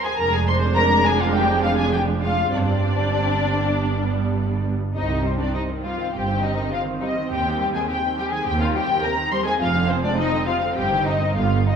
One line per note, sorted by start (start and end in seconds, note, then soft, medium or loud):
0.02 0.10 G#4 medium
0.02 0.17 G#5 loud
0.16 2.47 F1 medium
0.16 2.47 F2 medium
0.16 2.47 G#3 medium
0.16 2.47 D4 medium
0.16 0.32 A#4 loud
0.16 0.31 A#5 loud
0.33 0.47 G#4 medium
0.33 0.47 G#5 medium
0.47 0.76 C5 medium
0.47 0.55 C6 loud
0.75 1.05 A#4 medium
0.75 1.03 A#5 loud
1.04 1.20 G#4 medium
1.04 1.19 G#5 medium
1.20 1.34 F4 medium
1.20 1.33 F5 medium
1.34 1.62 G4 medium
1.34 1.62 G5 medium
1.63 1.69 F4 medium
1.63 1.77 F5 loud
1.76 1.92 G#4 medium
1.76 1.91 G#5 medium
1.91 2.01 G4 medium
1.91 1.99 G5 medium
2.21 2.51 F4 medium
2.21 2.51 F5 medium
2.51 4.70 G1 medium
2.51 4.70 G2 medium
2.51 3.71 G3 medium
2.51 3.71 C4 medium
2.51 4.65 D4 medium
2.51 2.58 D5 medium
2.59 2.66 C5 medium
2.65 4.64 D5 medium
3.74 4.72 G3 medium
3.74 4.72 B3 medium
4.94 5.45 C2 medium
4.94 5.08 C3 soft
4.94 9.56 C4 medium
4.94 5.23 D#4 medium
4.94 5.23 D#5 medium
5.10 5.25 D#3 soft
5.24 5.40 G3 medium
5.24 5.40 C4 medium
5.24 5.31 C5 medium
5.39 5.54 D#3 soft
5.39 5.54 D4 medium
5.39 5.54 D5 medium
5.54 5.69 C3 soft
5.54 5.62 D#4 medium
5.54 5.62 D#5 medium
5.69 5.84 D#3 soft
5.83 5.99 G3 soft
5.83 6.12 F4 medium
5.83 6.14 F5 medium
5.97 6.13 D#3 soft
6.12 6.62 G1 medium
6.12 6.62 G2 medium
6.12 6.26 C3 medium
6.12 6.42 G4 medium
6.12 6.43 G5 medium
6.28 6.43 D#3 soft
6.41 6.57 G3 soft
6.41 6.72 D#4 medium
6.41 6.73 D#5 medium
6.56 6.71 D#3 medium
6.71 6.86 C3 soft
6.71 6.79 F4 medium
6.71 6.81 F5 medium
6.85 7.01 D#3 soft
7.00 7.16 G3 medium
7.00 7.08 D#4 medium
7.00 7.31 D#5 medium
7.16 7.31 D#3 soft
7.28 7.79 D#2 medium
7.28 7.45 C3 medium
7.28 7.58 G4 medium
7.33 7.60 G5 medium
7.46 7.60 D#3 medium
7.59 7.74 G3 medium
7.59 7.65 G4 medium
7.59 7.66 G5 medium
7.73 7.88 D#3 medium
7.73 7.87 G#4 medium
7.73 7.81 G#5 medium
7.87 8.03 C3 medium
7.87 7.95 G4 medium
7.87 8.17 G5 medium
8.03 8.17 D#3 medium
8.16 8.32 G3 medium
8.16 8.31 G4 medium
8.16 8.24 G5 medium
8.31 8.46 D#3 medium
8.31 8.46 G#4 medium
8.31 8.47 G#5 medium
8.45 8.94 D#2 medium
8.45 8.59 C3 medium
8.45 8.60 G4 medium
8.45 8.60 G5 loud
8.59 8.75 D#3 medium
8.59 8.74 F4 medium
8.59 8.67 F5 medium
8.74 8.89 G3 medium
8.74 9.03 G4 medium
8.74 9.03 G5 loud
8.89 9.03 D#3 medium
9.02 9.17 C3 medium
9.02 9.10 A#4 medium
9.02 9.31 A#5 loud
9.17 9.31 D#3 medium
9.31 9.46 G3 medium
9.31 9.46 C5 medium
9.31 9.46 C6 medium
9.44 9.60 D#3 medium
9.44 9.60 G#4 medium
9.44 9.52 G#5 medium
9.59 10.08 F1 medium
9.59 10.09 F2 medium
9.59 9.73 C3 medium
9.59 11.32 C4 medium
9.59 9.68 F4 medium
9.59 9.89 F5 loud
9.75 9.89 D3 medium
9.89 10.04 F3 medium
9.89 9.96 C4 medium
9.89 10.03 C5 medium
10.03 10.18 G#3 medium
10.03 10.18 D4 medium
10.03 10.18 D5 medium
10.17 10.33 F3 medium
10.17 10.46 D#4 medium
10.17 10.47 D#5 medium
10.33 10.47 D3 medium
10.47 10.62 C3 medium
10.47 10.55 F4 medium
10.47 10.76 F5 medium
10.63 10.77 D3 medium
10.75 11.26 G1 medium
10.75 11.26 G2 medium
10.75 10.90 C3 medium
10.75 11.05 G4 medium
10.75 11.05 G5 medium
10.92 11.06 D#3 medium
11.05 11.21 C3 medium
11.05 11.36 D#4 medium
11.05 11.36 D#5 medium
11.21 11.36 D#3 medium
11.35 11.76 G1 medium
11.35 11.76 G2 medium
11.35 11.50 D3 medium
11.35 11.76 B3 medium
11.35 11.67 F4 medium
11.35 11.67 F5 medium
11.53 11.67 D3 soft
11.66 11.76 D3 soft
11.66 11.73 D#4 medium
11.66 11.76 D#5 medium